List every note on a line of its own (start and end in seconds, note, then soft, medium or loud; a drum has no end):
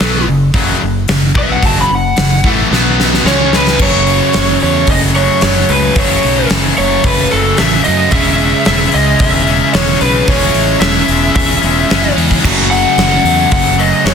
0.00 0.26 B1 loud
0.00 0.27 B2 loud
0.00 0.27 F#3 medium
0.00 0.27 B3 loud
0.00 0.24 A4 loud
0.00 snare loud
0.27 0.53 F#1 medium
0.27 0.49 F#2 medium
0.27 0.49 C#3 medium
0.54 0.80 F#1 loud
0.54 0.80 F#2 loud
0.54 0.81 C#3 loud
0.54 0.81 F#3 loud
0.54 kick loud
0.54 open hi-hat medium
0.82 1.07 F#1 medium
0.82 1.03 F#2 medium
0.82 1.03 C#3 medium
1.08 1.34 F#1 medium
1.08 1.31 F#2 medium
1.08 1.31 C#3 medium
1.08 snare loud
1.08 open hi-hat medium
1.35 1.61 B1 loud
1.35 1.62 B2 loud
1.35 1.62 F#3 medium
1.35 1.62 B3 loud
1.35 1.50 E5 loud
1.35 kick loud
1.52 1.65 F#5 loud
1.63 1.88 F#1 loud
1.63 1.89 F#2 loud
1.63 1.89 C#3 loud
1.63 1.90 F#3 loud
1.63 1.77 A5 loud
1.63 kick loud
1.63 open hi-hat medium
1.81 1.92 B5 loud
1.90 2.15 F#1 medium
1.90 2.12 F#2 medium
1.90 2.12 C#3 medium
1.95 2.45 F#5 loud
2.17 2.43 F#1 medium
2.17 2.39 F#2 medium
2.17 2.39 C#3 medium
2.17 snare loud
2.17 open hi-hat medium
2.43 2.69 A1 medium
2.43 2.70 A2 loud
2.43 2.70 E3 loud
2.43 2.70 A3 loud
2.43 kick loud
2.71 3.21 B1 loud
2.71 3.24 B2 loud
2.71 3.25 F#3 loud
2.71 3.25 B3 loud
2.71 snare medium
3.00 snare medium
3.14 snare medium
3.25 3.75 C#2 loud
3.25 3.79 C#3 loud
3.25 3.79 G#3 loud
3.25 3.79 C#4 loud
3.25 3.54 C#5 medium
3.25 snare loud
3.53 3.79 B4 medium
3.53 snare loud
3.67 snare loud
3.79 4.20 F#1 loud
3.79 4.63 F#2 medium
3.79 4.60 C#3 medium
3.79 4.61 F#3 medium
3.79 4.61 A3 loud
3.79 4.60 C#4 loud
3.79 4.58 C#5 medium
3.79 kick loud
3.79 crash loud
4.07 open hi-hat medium
4.33 4.55 F#1 medium
4.33 snare loud
4.33 open hi-hat medium
4.60 4.82 E2 medium
4.60 5.95 F#2 medium
4.60 5.95 C#3 medium
4.60 5.95 F#3 medium
4.60 5.95 A3 medium
4.60 5.97 C#4 medium
4.60 4.90 C#5 loud
4.60 open hi-hat medium
4.87 5.28 F#1 medium
4.87 kick loud
4.87 open hi-hat medium
4.91 4.98 D#5 loud
5.15 5.40 F#2 medium
5.15 5.41 C#3 medium
5.15 5.40 F#3 medium
5.15 5.41 C#5 medium
5.15 open hi-hat medium
5.41 5.62 F#1 loud
5.41 5.94 F#2 medium
5.41 5.95 C#3 medium
5.41 5.96 F#3 loud
5.41 5.70 C#5 loud
5.41 snare loud
5.41 open hi-hat medium
5.69 5.89 C#2 medium
5.69 5.96 F#2 medium
5.69 5.95 C#3 medium
5.69 5.94 F#3 medium
5.69 5.95 B4 medium
5.69 open hi-hat medium
5.96 6.16 F#1 medium
5.96 6.76 F#2 loud
5.96 6.76 C#3 medium
5.96 6.76 F#3 medium
5.96 6.76 A3 loud
5.96 6.77 C#4 loud
5.96 6.47 C#5 loud
5.96 kick loud
5.96 open hi-hat medium
6.23 6.44 B1 medium
6.23 open hi-hat medium
6.49 6.71 F#1 medium
6.49 snare loud
6.49 open hi-hat medium
6.77 6.98 F#1 medium
6.77 8.12 F#2 medium
6.77 8.11 C#3 medium
6.77 8.12 F#3 medium
6.77 8.11 A3 medium
6.77 8.13 C#4 medium
6.77 7.06 C#5 medium
6.77 open hi-hat medium
7.04 7.24 F#1 medium
7.04 7.32 B4 medium
7.04 kick loud
7.04 open hi-hat medium
7.30 7.53 F#1 medium
7.30 7.57 F#2 medium
7.30 7.57 C#3 medium
7.30 7.56 F#3 medium
7.30 7.60 A4 medium
7.30 open hi-hat medium
7.57 7.80 A1 medium
7.57 8.11 F#2 medium
7.57 8.12 C#3 medium
7.57 8.12 F#3 medium
7.57 7.84 E5 loud
7.57 snare loud
7.57 open hi-hat medium
7.84 8.12 F#2 medium
7.84 8.07 F#2 loud
7.84 8.11 C#3 medium
7.84 8.11 F#3 medium
7.84 8.12 D#5 loud
7.84 open hi-hat medium
8.11 8.52 E1 loud
8.11 10.00 C#3 medium
8.11 9.46 C#3 medium
8.11 8.96 E3 medium
8.11 8.96 G#3 loud
8.11 8.94 C#4 loud
8.11 8.94 E4 loud
8.11 8.63 E5 loud
8.11 kick loud
8.11 open hi-hat medium
8.38 open hi-hat medium
8.65 8.87 E1 medium
8.65 8.94 E5 loud
8.65 snare loud
8.65 open hi-hat medium
8.92 9.14 C#2 medium
8.92 10.28 C#4 medium
8.92 10.27 E4 medium
8.92 9.21 D#5 loud
8.92 open hi-hat medium
8.96 10.27 E3 medium
8.96 10.27 G#3 medium
9.19 9.60 E1 medium
9.19 9.71 E5 loud
9.19 kick loud
9.19 open hi-hat medium
9.46 9.73 C#3 medium
9.46 9.73 G#3 medium
9.46 9.77 C#4 medium
9.46 open hi-hat medium
9.74 9.95 E1 medium
9.74 10.27 C#3 medium
9.74 10.28 G#3 medium
9.74 9.99 C#5 loud
9.74 snare loud
9.74 open hi-hat medium
9.78 10.32 C#4 medium
10.01 10.21 B1 loud
10.01 10.25 C#3 medium
10.01 10.27 G#3 medium
10.01 10.28 C#4 medium
10.01 10.26 B4 medium
10.01 open hi-hat medium
10.26 10.48 E1 medium
10.26 12.15 C#3 loud
10.26 11.62 C#3 medium
10.26 11.08 E3 medium
10.26 11.08 G#3 loud
10.26 11.10 C#4 loud
10.26 11.07 E4 loud
10.26 10.80 C#5 loud
10.26 kick loud
10.26 open hi-hat medium
10.54 10.75 A1 medium
10.54 open hi-hat medium
10.80 11.01 E1 loud
10.80 11.35 E5 medium
10.80 snare loud
10.80 open hi-hat medium
11.08 11.29 E1 medium
11.08 12.43 E3 medium
11.08 12.43 G#3 medium
11.08 12.46 C#4 medium
11.08 12.42 E4 medium
11.08 open hi-hat medium
11.35 11.56 E1 medium
11.35 12.13 E5 medium
11.35 kick loud
11.35 open hi-hat medium
11.62 11.84 E1 medium
11.62 11.89 C#3 medium
11.62 11.89 G#3 medium
11.62 11.92 C#4 medium
11.62 open hi-hat medium
11.90 12.11 F#1 medium
11.90 12.43 C#3 medium
11.90 12.43 G#3 medium
11.90 14.14 C#4 medium
11.90 snare loud
11.90 open hi-hat medium
12.16 12.37 E2 medium
12.16 12.43 C#3 medium
12.16 12.43 G#3 medium
12.16 14.14 C#4 medium
12.16 open hi-hat medium
12.31 kick medium
12.44 12.84 F#1 medium
12.44 13.27 F#2 loud
12.44 13.24 C#3 medium
12.44 13.25 F#3 medium
12.44 13.25 A3 loud
12.44 13.25 C#4 loud
12.44 kick loud
12.44 crash loud
12.71 13.48 F#5 loud
12.71 open hi-hat medium
12.98 13.18 F#1 medium
12.98 snare loud
12.98 open hi-hat medium
13.24 13.44 E2 medium
13.24 14.14 F#2 medium
13.24 14.14 C#3 medium
13.24 14.14 F#3 medium
13.24 14.14 A3 medium
13.24 14.14 C#4 medium
13.24 open hi-hat medium
13.51 13.92 F#1 medium
13.51 13.80 F#5 loud
13.51 kick loud
13.51 open hi-hat medium
13.78 14.03 F#2 medium
13.78 14.05 C#3 medium
13.78 14.07 F#3 medium
13.78 14.04 D#5 medium
13.78 open hi-hat medium
14.05 14.14 F#1 medium
14.05 14.14 F#2 medium
14.05 14.14 C#3 medium
14.05 14.14 F#3 medium
14.05 14.14 C#5 medium
14.05 snare loud
14.05 open hi-hat medium